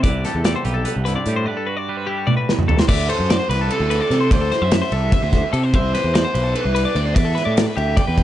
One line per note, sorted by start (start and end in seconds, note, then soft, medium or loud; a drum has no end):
0.00 1.05 C3 medium
0.00 1.06 C4 medium
0.00 0.25 E4 medium
0.00 0.24 D5 medium
0.00 kick loud
0.00 closed hi-hat loud
0.04 0.23 C2 loud
0.04 0.46 B4 medium
0.25 0.65 G4 medium
0.25 0.45 A4 medium
0.25 snare soft
0.25 closed hi-hat medium
0.35 0.54 E2 medium
0.44 1.87 G3 medium
0.44 0.85 A4 medium
0.44 0.55 D5 medium
0.44 snare loud
0.44 closed hi-hat medium
0.56 0.64 C5 medium
0.64 0.84 B1 loud
0.64 1.26 G4 medium
0.64 0.75 B4 medium
0.64 closed hi-hat medium
0.74 0.95 A4 medium
0.85 1.44 B4 medium
0.85 closed hi-hat medium
0.96 1.15 C2 medium
1.05 1.46 G2 medium
1.05 1.45 E4 medium
1.05 1.15 B4 medium
1.05 closed hi-hat medium
1.16 1.36 D5 medium
1.26 1.45 A2 loud
1.26 1.45 G4 medium
1.26 closed hi-hat medium
1.36 1.46 C5 medium
1.46 2.28 G2 medium
1.46 1.88 B4 medium
1.46 1.56 D5 loud
1.57 1.67 A4 medium
1.66 2.08 F#4 medium
1.66 1.77 B4 medium
1.77 1.97 D5 medium
1.89 2.90 G3 medium
1.89 2.87 B4 medium
1.97 2.07 B4 medium
2.07 2.18 E4 medium
2.07 2.27 G4 medium
2.18 2.89 F#4 medium
2.27 2.48 A2 medium
2.27 2.36 D5 medium
2.27 high tom medium
2.37 2.58 B4 medium
2.48 2.69 B2 medium
2.48 snare medium
2.59 mid tom medium
2.68 2.89 C3 medium
2.68 2.79 A4 medium
2.68 floor tom medium
2.79 2.88 C5 medium
2.79 snare medium
2.88 3.08 D2 medium
2.88 3.09 D5 loud
2.88 3.09 E5 loud
2.88 kick loud
2.88 crash loud
3.09 3.30 A4 medium
3.09 3.49 C5 medium
3.09 ride medium
3.20 3.38 F#2 medium
3.30 3.39 D5 medium
3.30 snare loud
3.30 ride loud
3.40 3.49 C5 medium
3.49 3.69 C2 loud
3.49 3.71 B4 medium
3.49 3.60 B4 medium
3.49 snare soft
3.49 ride medium
3.61 3.81 A4 medium
3.70 4.33 A4 medium
3.70 ride loud
3.80 3.99 D2 loud
3.90 4.01 B4 medium
3.90 ride medium
4.01 4.20 D5 medium
4.10 4.30 C3 loud
4.10 snare soft
4.10 ride medium
4.21 4.31 C5 medium
4.31 4.50 D2 loud
4.31 4.73 C5 loud
4.31 4.41 D5 loud
4.31 kick loud
4.31 ride loud
4.41 4.51 A4 medium
4.52 4.62 C5 medium
4.52 snare soft
4.52 ride medium
4.62 4.81 F#2 medium
4.62 4.81 E5 medium
4.71 5.50 E5 loud
4.71 snare loud
4.71 ride loud
4.82 4.92 C5 medium
4.92 5.11 C2 loud
4.92 5.13 A4 medium
4.92 ride medium
5.12 5.22 E5 medium
5.12 kick loud
5.12 ride loud
5.22 5.42 D2 loud
5.22 5.43 C5 medium
5.33 kick medium
5.33 snare soft
5.33 ride medium
5.53 5.72 C3 loud
5.53 5.63 A4 medium
5.53 ride medium
5.63 5.74 C5 medium
5.74 5.92 C2 loud
5.74 6.14 C5 loud
5.74 5.94 E5 loud
5.74 kick loud
5.74 ride loud
5.95 6.14 B4 medium
5.95 snare soft
5.95 ride medium
6.04 6.23 E2 medium
6.14 6.53 C5 loud
6.14 6.24 D5 medium
6.14 snare loud
6.14 ride loud
6.25 6.34 C5 medium
6.34 6.54 B1 loud
6.34 6.43 B4 medium
6.34 ride medium
6.43 6.64 A4 medium
6.55 6.93 B4 loud
6.55 ride loud
6.65 6.84 C2 loud
6.75 6.85 B4 medium
6.75 ride medium
6.85 7.06 D5 medium
6.95 7.14 D2 loud
6.95 7.14 D5 loud
6.95 ride medium
7.06 7.15 C5 medium
7.15 7.35 E2 medium
7.15 7.26 D5 loud
7.15 7.53 E5 loud
7.15 kick loud
7.15 ride loud
7.25 7.36 A4 medium
7.35 7.45 B4 medium
7.35 snare soft
7.35 ride medium
7.45 7.65 A2 medium
7.45 7.66 D5 medium
7.57 snare loud
7.57 ride loud
7.66 7.77 B4 medium
7.77 7.96 D2 medium
7.77 7.97 G4 medium
7.77 7.98 E5 loud
7.77 ride medium
7.97 8.07 D5 medium
7.97 8.23 G5 loud
7.97 kick loud
7.97 ride medium
8.07 8.23 E2 loud
8.07 8.23 B4 medium
8.18 kick medium
8.18 ride medium